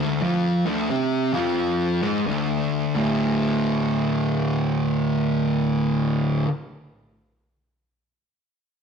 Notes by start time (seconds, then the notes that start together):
Already playing: D2 D3
0.22 F2 F3
0.66 D2 D3
0.89 C3 C4
1.33 F2 F3
2.03 G#2 G#3
2.27 D2 D3
2.95 D2 A2 D3